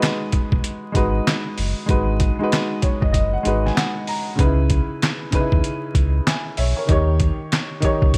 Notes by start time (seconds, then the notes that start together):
Already playing: G#3 D#4 F#4 B4
0.02 snare, clap, closed hi-hat
0.32 kick, closed hi-hat
0.52 B1, kick
0.64 closed hi-hat
0.92 G#1 G#3 D#4 F#4, kick, closed hi-hat
0.96 B4
1.27 snare, clap, closed hi-hat
1.58 F#1, open hi-hat
1.86 G#1 G#3 D#4 F#4, kick, closed hi-hat
1.90 B4
2.20 kick, closed hi-hat
2.39 G#3 D#4 F#4
2.43 B4
2.52 snare, clap, closed hi-hat
2.82 C#5, kick, closed hi-hat
3.01 F#1 D#5, kick
3.12 D#5, kick, closed hi-hat
3.33 F#5
3.43 G#1 G#3 D#4 F#4, closed hi-hat
3.47 B4
3.66 G#5, snare
3.75 F#5, snare, clap, closed hi-hat
4.07 A#5, open hi-hat
4.36 C#2 C#3 C#4 D#4, kick, closed hi-hat
4.40 B4
4.45 E4
4.70 kick, closed hi-hat
5.02 snare, clap, closed hi-hat
5.31 C#3 C#4 D#4, kick, closed hi-hat
5.35 B4
5.40 E4
5.52 D#2, kick
5.64 closed hi-hat
5.95 C#2, kick, closed hi-hat
6.27 E5 G#5, snare, clap, closed hi-hat
6.57 B1 C#5 E5, open hi-hat
6.76 A#4 C#5
6.87 D#2 D#3 D#4 G4, kick, closed hi-hat
6.91 C#5
7.20 kick, closed hi-hat
7.52 snare, clap, closed hi-hat
7.80 D#3 D#4 G4, kick, closed hi-hat
7.85 C#5
8.02 C#2, kick
8.14 kick, closed hi-hat